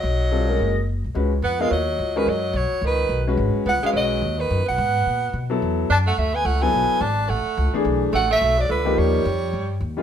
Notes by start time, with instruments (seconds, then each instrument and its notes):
Already playing: tenor saxophone F#3, soprano saxophone D#5
0.03 upright bass B1
0.31 grand piano G3 C4 F4 A4
0.48 grand piano G#3 C#4 F#4 A#4
0.59 upright bass F#1
1.04 upright bass B1
1.15 upright bass C#2, grand piano G#3 C#4 F#4 B4
1.42 upright bass F2, tenor saxophone B3, soprano saxophone F#5
1.60 tenor saxophone G#3, grand piano B3 F4 A#4 D#5, soprano saxophone F5
1.70 upright bass D#2, tenor saxophone F#3, soprano saxophone D#5
1.99 upright bass C#2
2.16 tenor saxophone D#3, grand piano G#3 C#4 F#4 A#4, soprano saxophone B4
2.26 upright bass F#2, tenor saxophone F#3, soprano saxophone D#5
2.53 upright bass B1, tenor saxophone F#3, soprano saxophone C#5
2.72 muted upright bass stroke
2.82 upright bass C#2, tenor saxophone D#3
2.87 soprano saxophone B4
3.09 upright bass B1
3.27 grand piano G#3 C#4 F#4 B4
3.37 upright bass G#1
3.55 muted upright bass stroke
3.66 upright bass C#2, tenor saxophone B3, soprano saxophone F#5
3.83 tenor saxophone G#3, grand piano G#3 C#4 F#4 B4, soprano saxophone F5, muted upright bass stroke
3.93 upright bass B1, tenor saxophone F#3
3.97 soprano saxophone D#5
4.21 upright bass D#2
4.39 tenor saxophone D#3, soprano saxophone B4
4.50 upright bass F#2
4.60 upright bass C#2
4.66 upright bass B1, tenor saxophone B3, soprano saxophone F#5
4.78 upright bass G#2
5.06 upright bass A#2
5.33 upright bass B2
5.50 grand piano F#3 B3 E4 A4
5.62 upright bass E2
5.90 upright bass F#2, tenor saxophone D4, soprano saxophone A5
6.07 tenor saxophone A3, soprano saxophone F#5
6.17 upright bass D2, tenor saxophone A3, soprano saxophone E5
6.34 tenor saxophone B3, soprano saxophone G#5
6.45 upright bass C#2, tenor saxophone A3, soprano saxophone F#5
6.62 grand piano F#3 B3 E4 A4, tenor saxophone B3, soprano saxophone G#5
6.73 upright bass B1
6.91 muted upright bass stroke
7.01 upright bass G#1, tenor saxophone D4, soprano saxophone A5
7.29 upright bass A1, tenor saxophone A3, soprano saxophone F#5
7.46 muted upright bass stroke
7.57 upright bass C#2
7.73 grand piano E3 A3 D4 G#4, muted upright bass stroke
7.84 upright bass B1
8.13 upright bass A1, tenor saxophone A3, soprano saxophone F#5
8.31 tenor saxophone A3, soprano saxophone E5
8.41 upright bass B1
8.59 tenor saxophone F#3, soprano saxophone D5
8.69 upright bass C#2, tenor saxophone D3, soprano saxophone B4
8.85 grand piano F3 A#3 D#4 G4
8.98 upright bass D#2, tenor saxophone G3, soprano saxophone C#5
9.25 upright bass F2
9.53 upright bass G2
9.80 upright bass D#2
9.97 grand piano D#3 G3 G#3 C#4 F4